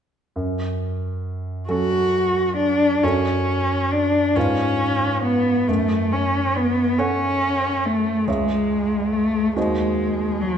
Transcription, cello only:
1.70 2.54 F#4 medium
2.58 3.05 D4 medium
3.04 3.93 C#4 soft
3.92 4.37 D4 soft
4.35 5.23 C#4 soft
5.24 5.70 B3 soft
5.68 6.14 A3 soft
6.12 6.58 C#4 soft
6.56 7.00 B3 soft
6.99 7.87 C#4 soft
7.86 8.28 A3 soft
8.27 9.14 G#3 medium
9.13 9.56 A3 medium
9.56 10.43 G#3 medium
10.42 10.58 F#3 medium

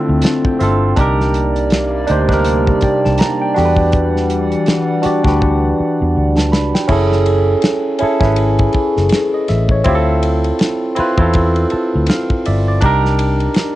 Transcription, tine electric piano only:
0.00 0.59 C4 medium
0.00 0.99 E4 loud
0.00 0.61 F4 loud
0.00 0.63 A4 loud
0.24 0.44 A5 medium
0.45 0.59 G5 medium
0.59 0.91 C4 medium
0.59 0.93 F4 medium
0.59 0.92 E5 medium
0.59 0.95 F5 medium
0.63 0.93 A4 medium
0.96 1.93 D4 loud
0.96 1.93 D#4 loud
0.96 1.94 G4 loud
1.01 1.95 A#4 loud
2.07 2.26 D4 medium
2.07 2.26 D#4 medium
2.07 2.27 G4 medium
2.11 2.28 C5 medium
2.29 3.51 D4 medium
2.29 3.51 D#4 medium
2.29 3.52 G4 medium
2.33 3.53 A#4 medium
2.83 3.03 G5 medium
3.05 3.19 A5 medium
3.19 3.40 A#5 medium
3.41 3.76 G5 medium
3.54 4.81 D4 medium
3.54 4.82 F#4 medium
3.54 4.83 G4 medium
3.59 3.65 A4 medium
3.65 4.87 B4 loud
5.02 5.21 D4 medium
5.02 5.22 F#4 medium
5.02 5.23 G4 medium
5.06 5.24 D5 loud
5.24 6.33 D4 medium
5.24 6.33 F#4 medium
5.24 6.34 G4 medium
5.28 6.35 B4 medium
6.37 6.51 A5 medium
6.52 6.73 B5 medium
6.75 7.10 G5 medium
6.88 7.85 C#4 loud
6.88 7.85 E4 loud
6.88 7.86 G#4 loud
6.92 7.87 A4 loud
7.99 8.18 C#4 medium
7.99 8.19 E4 medium
7.99 8.19 G#4 medium
8.03 8.20 A4 medium
8.20 9.43 C#4 medium
8.20 9.43 E4 medium
8.20 9.44 G#4 medium
8.25 9.45 B4 medium
9.34 9.48 D#5 medium
9.49 9.70 E5 medium
9.71 10.06 C#5 medium
9.84 10.81 C4 loud
9.84 10.82 E4 loud
9.84 10.83 F4 loud
9.88 9.95 G4 loud
9.95 10.86 A4 loud
10.95 11.14 C4 medium
10.95 11.15 E4 medium
10.95 11.16 F4 medium
11.00 11.17 B4 loud
11.17 12.26 C4 medium
11.17 12.27 E4 medium
11.17 12.27 F4 medium
11.22 12.28 A4 medium
11.72 12.06 A5 medium
12.09 12.43 F5 medium
12.46 12.67 D5 medium
12.46 12.66 E5 medium
12.68 13.03 D5 medium
12.81 13.75 D4 loud
12.81 13.75 D#4 loud
12.81 13.75 G4 loud
12.85 13.75 A#4 loud

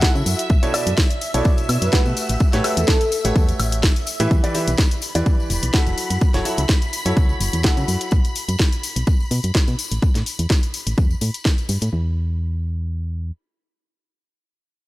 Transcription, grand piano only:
0.02 0.49 F#3 medium
0.02 0.49 E4 medium
0.02 0.49 F#4 medium
0.02 0.49 A4 medium
0.02 0.49 F#5 medium
0.63 0.72 B2 loud
0.63 0.72 D4 medium
0.63 0.72 E4 medium
0.63 0.72 A4 medium
0.63 0.72 C#5 loud
0.74 0.89 B2 medium
0.74 0.89 D4 medium
0.74 0.89 E4 medium
0.74 0.89 A4 medium
0.74 0.89 D5 loud
1.34 1.90 B2 medium
1.34 1.90 D4 medium
1.34 1.90 E4 medium
1.34 1.90 A4 medium
1.34 1.90 C#5 medium
1.93 2.50 A3 medium
1.93 2.50 F#4 medium
1.93 2.50 G4 medium
1.93 2.50 B4 medium
1.93 2.50 F#5 medium
2.53 2.63 A3 loud
2.53 2.63 F#4 medium
2.53 2.63 G4 medium
2.53 2.63 B4 medium
2.53 2.63 C#5 loud
2.64 2.79 A3 medium
2.64 2.79 F#4 medium
2.64 2.79 G4 medium
2.64 2.80 B4 medium
2.64 2.79 E5 loud
3.25 3.81 A3 medium
3.25 3.81 F#4 medium
3.25 3.81 G4 medium
3.25 3.81 B4 medium
3.25 3.81 C#5 medium
4.20 4.41 E3 loud
4.20 4.41 E4 medium
4.20 4.41 G4 medium
4.20 4.41 B4 medium
4.20 4.41 E5 loud
4.44 4.53 E3 loud
4.44 4.53 E4 medium
4.44 4.53 G4 medium
4.44 4.53 B4 medium
4.44 4.53 D5 loud
4.55 4.70 E3 medium
4.55 4.70 E4 medium
4.55 4.70 G4 medium
4.55 4.70 B4 medium
4.55 4.70 E5 loud
5.15 5.71 E3 medium
5.15 5.71 E4 medium
5.15 5.71 G4 medium
5.15 5.71 B4 medium
5.15 5.71 D5 medium
5.74 6.31 F#3 medium
5.74 6.31 E4 medium
5.74 6.31 F#4 medium
5.74 6.31 A4 medium
5.74 6.31 F#5 medium
6.34 6.44 F#3 loud
6.34 6.44 E4 medium
6.34 6.44 F#4 medium
6.34 6.44 A4 medium
6.34 6.44 C#5 loud
6.45 6.60 F#3 medium
6.45 6.60 E4 medium
6.45 6.60 F#4 medium
6.45 6.60 A4 medium
6.45 6.60 E5 loud
7.06 7.62 F#3 medium
7.06 7.62 E4 medium
7.06 7.62 F#4 medium
7.06 7.62 A4 medium
7.06 7.62 C#5 medium
7.64 8.11 F#3 medium
7.64 8.11 E4 medium
7.64 8.11 F#4 medium
7.64 8.11 A4 medium
7.64 8.11 F#5 medium

